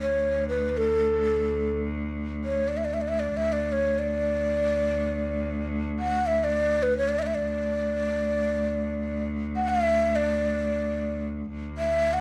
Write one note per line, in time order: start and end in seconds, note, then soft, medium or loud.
0.00 3.34 D2 medium
0.00 0.45 C#5 medium
0.48 0.69 B4 medium
0.69 0.79 B4 medium
0.77 1.81 A4 medium
2.44 2.70 C#5 medium
2.68 2.79 D5 medium
2.77 2.86 E5 medium
2.85 2.95 D5 medium
2.94 3.03 E5 medium
3.01 3.10 D5 medium
3.08 3.21 E5 medium
3.20 3.38 D5 medium
3.34 7.40 D2 medium
3.34 3.54 E5 medium
3.52 3.74 D5 medium
3.72 4.00 C#5 medium
3.99 5.63 D5 medium
5.99 6.28 F#5 medium
6.27 6.45 E5 medium
6.44 6.84 D5 medium
6.83 6.97 B4 medium
6.97 7.10 C#5 medium
7.09 7.20 D5 medium
7.19 7.28 D5 medium
7.19 7.24 E5 medium
7.26 7.36 E5 medium
7.35 9.23 D5 medium
7.40 11.48 D2 medium
9.56 9.70 F#5 medium
9.68 10.17 E5 medium
10.16 11.25 D5 medium
11.51 12.21 D2 medium
11.77 12.15 E5 medium
12.13 12.21 F#5 medium